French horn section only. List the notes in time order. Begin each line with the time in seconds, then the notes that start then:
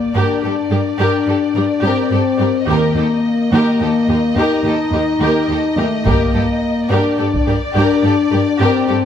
Already playing: A#3
0.16 D4
1.01 D4
1.85 C4
2.68 A#3
3.53 A#3
4.37 D#4
5.78 A3
6.06 A#3
6.90 D4
7.76 D4
8.60 C4